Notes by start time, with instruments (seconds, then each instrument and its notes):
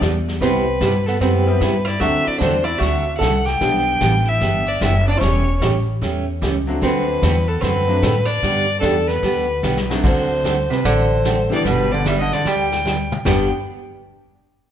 0.01 upright bass E2, steel-string acoustic guitar E3 B3 D4 G4, kick, snare, hi-hat pedal
0.28 snare
0.41 upright bass C2, steel-string acoustic guitar C3 G3 B3 E4 G4, hollow-body jazz guitar C4, fiddle B4, brush sweep, kick, snare
0.81 upright bass G2, steel-string acoustic guitar C3 G3 B3 E4 G4, kick, snare, hi-hat pedal
1.06 hollow-body jazz guitar B3, fiddle A4, snare
1.21 upright bass F#2, steel-string acoustic guitar C3 G3 B3 E4 G4, hollow-body jazz guitar C4, fiddle B4, brush sweep, kick, snare
1.46 honky-tonk piano G3 B3 C4 E4 G4
1.61 upright bass G2, steel-string acoustic guitar C3 G3 B3 E4 G4, kick, snare, hi-hat pedal
1.85 hollow-body jazz guitar E4, fiddle D5, snare
1.99 upright bass D2, steel-string acoustic guitar D3 A3 C4 F#4 A4, honky-tonk piano F#3 A3 C4 D4 F#4, hollow-body jazz guitar F#4, fiddle E5, brush sweep, kick, snare
2.25 hollow-body jazz guitar E4, fiddle D5, muted upright bass stroke
2.38 upright bass E2, steel-string acoustic guitar D3 A3 C4 F#4 A4, hollow-body jazz guitar D4, fiddle C5, kick, snare, hi-hat pedal
2.64 hollow-body jazz guitar E4, fiddle D5
2.78 upright bass D2, steel-string acoustic guitar D3 A3 C4 F#4 A4, hollow-body jazz guitar F#4, fiddle E5, brush sweep, kick, snare
3.17 upright bass C2, hollow-body jazz guitar A4, fiddle F#5
3.21 steel-string acoustic guitar D3 A3 C4 F#4 A4, kick, snare, hi-hat pedal
3.45 hollow-body jazz guitar G4, fiddle G5, snare
3.60 upright bass B1, steel-string acoustic guitar E3 B3 D4 G4, honky-tonk piano G3 B3 D4 E4 G4, brush sweep, kick, snare
4.01 upright bass A1, steel-string acoustic guitar E3 B3 D4 G4, kick, snare, hi-hat pedal
4.25 hollow-body jazz guitar E4, fiddle E5
4.40 upright bass G1, steel-string acoustic guitar E3 B3 D4 G4, brush sweep, kick, snare
4.67 hollow-body jazz guitar D4, fiddle D5
4.81 upright bass F#1, steel-string acoustic guitar E3 B3 D4 G4, hollow-body jazz guitar E4, fiddle E5, kick, snare, hi-hat pedal
5.08 hollow-body jazz guitar D4, fiddle D5
5.17 hollow-body jazz guitar C#4 E4, fiddle C5, brush sweep, snare
5.21 upright bass E1, steel-string acoustic guitar E3 A3 C#4 G4, fiddle C#5, kick
5.61 upright bass A1, steel-string acoustic guitar E3 A3 C#4 G4, kick, snare, hi-hat pedal
6.01 upright bass E2, steel-string acoustic guitar E3 A3 C#4 G4, brush sweep, kick, snare
6.42 upright bass C#2, steel-string acoustic guitar E3 A3 C#4 G4, kick, snare, hi-hat pedal
6.67 honky-tonk piano F#3 A3 C4 D4 F#4
6.82 upright bass D2, steel-string acoustic guitar D3 A3 C4 F#4 A4, hollow-body jazz guitar C4, fiddle B4, brush sweep, kick, snare
7.22 upright bass E2, steel-string acoustic guitar D3 A3 C4 F#4 A4, kick, snare, hi-hat pedal
7.47 hollow-body jazz guitar B3, fiddle A4
7.61 upright bass F#2, steel-string acoustic guitar D3 A3 C4 F#4 A4, hollow-body jazz guitar C4, fiddle B4, brush sweep, kick, snare
7.88 honky-tonk piano F#3 A3 C4 D4 F#4
8.02 upright bass A2, steel-string acoustic guitar D3 A3 C4 F#4 A4, kick, snare, hi-hat pedal
8.25 hollow-body jazz guitar D4, fiddle D5
8.43 upright bass G2, steel-string acoustic guitar D3 G3 B3 D4 G4, brush sweep, kick, snare
8.80 upright bass E2, steel-string acoustic guitar D3 G3 B3 D4 G4, hollow-body jazz guitar D4, fiddle A4, kick, snare, hi-hat pedal
9.07 hollow-body jazz guitar B3, fiddle B4, snare
9.23 upright bass D2, steel-string acoustic guitar D3 G3 B3 D4 G4, brush sweep, kick, snare
9.63 upright bass B1, steel-string acoustic guitar D3 G3 B3 D4 G4, snare, hi-hat pedal
9.77 snare
9.89 honky-tonk piano F#3 A3 C4 D4 F#4, snare
10.04 upright bass D2, steel-string acoustic guitar D3 A3 C4 F#4 A4, hollow-body jazz guitar D3, fiddle C5, brush sweep, kick, snare, crash
10.44 steel-string acoustic guitar D3 A3 C4 F#4 A4, kick, snare, hi-hat pedal
10.70 hollow-body jazz guitar C3, fiddle B4, snare
10.84 upright bass A1, hollow-body jazz guitar D3, steel-string acoustic guitar D3 A3 C4 F#4 A4, fiddle C5, brush sweep, kick, snare
11.25 steel-string acoustic guitar D3 A3 C4 F#4 A4, kick, snare, hi-hat pedal
11.50 honky-tonk piano D3 G3 B3 D4 G4, hollow-body jazz guitar E3, fiddle D5, snare
11.65 upright bass G1, hollow-body jazz guitar B2, steel-string acoustic guitar D3 G3 B3 D4 G4, fiddle B4, brush sweep, kick, snare
11.92 hollow-body jazz guitar D3, fiddle D5
12.05 steel-string acoustic guitar D3 G3 B3 D4 G4, hollow-body jazz guitar G3, fiddle E5, kick, snare, hi-hat pedal
12.20 hollow-body jazz guitar D3, fiddle D#5
12.32 hollow-body jazz guitar D3, fiddle D5, snare
12.45 upright bass D2, steel-string acoustic guitar D3 G3 B3 D4 G4, hollow-body jazz guitar G3, fiddle G5, snare
12.72 snare
12.85 steel-string acoustic guitar D3 G3 B3 D4 G4, snare, hi-hat pedal
13.12 mid tom
13.25 upright bass G1, steel-string acoustic guitar G2 D3 G3 B3 D4 G4, honky-tonk piano G3 B3 D4 G4, hollow-body jazz guitar B3, fiddle G5, snare, floor tom, crash